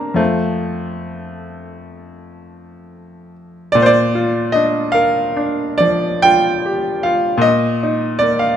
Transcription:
0.00 0.14 G2 medium
0.00 0.17 A#3 medium
0.00 0.21 C4 medium
0.00 0.22 D4 soft
0.00 0.22 A#4 soft
0.00 0.22 A#5 soft
0.14 3.68 F2 medium
0.14 3.33 A3 medium
0.14 3.69 F4 soft
0.14 3.69 C5 soft
0.14 3.70 F5 soft
3.72 7.36 A#2 medium
3.72 3.80 D5 loud
3.82 3.89 C5 medium
3.82 4.53 D5 medium
4.15 4.79 F4 medium
4.52 5.19 D4 medium
4.52 4.93 D#5 medium
4.92 5.63 A#4 medium
4.92 5.79 F5 medium
5.37 6.07 D4 medium
5.78 6.49 F3 medium
5.78 6.23 D5 medium
6.22 6.90 F4 medium
6.22 7.04 G5 loud
6.66 7.06 G4 medium
7.03 7.45 F4 medium
7.03 7.44 F5 medium
7.37 8.57 A#2 medium
7.42 8.20 D#5 medium
7.83 8.45 D#4 medium
8.19 8.57 A#3 medium
8.19 8.39 D5 medium
8.39 8.57 F5 medium

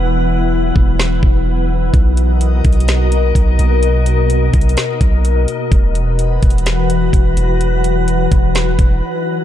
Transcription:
0.00 0.72 E1 loud
0.00 1.90 E3 medium
0.00 1.90 F#3 medium
0.00 3.79 B3 medium
0.00 1.90 E4 medium
0.00 1.90 B4 medium
0.00 1.90 F#5 medium
0.76 1.21 E1 loud
0.76 kick medium
0.99 snare loud
1.23 1.91 E1 loud
1.23 kick loud
1.94 2.62 B1 loud
1.94 5.68 B2 medium
1.94 5.68 A#3 medium
1.94 5.68 D#4 medium
1.94 5.68 F#4 medium
1.94 5.68 A#4 medium
1.94 5.68 D#5 medium
1.94 kick loud
1.94 closed hi-hat medium
2.17 closed hi-hat medium
2.41 closed hi-hat medium
2.64 3.33 B1 loud
2.64 kick medium
2.64 closed hi-hat medium
2.72 closed hi-hat medium
2.80 closed hi-hat medium
2.88 snare loud
2.88 closed hi-hat medium
3.12 closed hi-hat medium
3.35 3.58 B1 loud
3.35 kick medium
3.35 closed hi-hat medium
3.59 4.50 B1 loud
3.59 closed hi-hat medium
3.83 5.70 A#4 medium
3.83 closed hi-hat medium
4.06 closed hi-hat medium
4.30 closed hi-hat medium
4.53 4.76 B1 loud
4.53 kick medium
4.53 closed hi-hat medium
4.61 closed hi-hat medium
4.69 closed hi-hat medium
4.77 snare loud
4.77 closed hi-hat medium
5.01 5.46 B1 loud
5.01 kick medium
5.01 closed hi-hat medium
5.25 closed hi-hat medium
5.48 closed hi-hat medium
5.71 6.40 E1 loud
5.71 9.44 E3 medium
5.71 9.44 F#3 medium
5.71 7.59 E4 medium
5.71 9.44 F#4 medium
5.71 9.44 B4 medium
5.71 9.44 F#5 medium
5.71 kick loud
5.71 closed hi-hat medium
5.95 closed hi-hat medium
6.19 closed hi-hat medium
6.42 7.11 E1 loud
6.42 kick medium
6.42 closed hi-hat medium
6.50 closed hi-hat medium
6.58 closed hi-hat medium
6.66 snare loud
6.66 closed hi-hat medium
6.90 closed hi-hat medium
7.13 7.36 E1 loud
7.13 kick medium
7.13 closed hi-hat medium
7.37 8.28 E1 loud
7.37 closed hi-hat medium
7.61 9.44 D#4 medium
7.61 closed hi-hat medium
7.84 closed hi-hat medium
8.08 closed hi-hat medium
8.32 8.77 E1 loud
8.32 kick medium
8.32 closed hi-hat medium
8.55 snare loud
8.55 closed hi-hat medium
8.79 9.01 E1 loud
8.79 kick medium
8.79 closed hi-hat medium

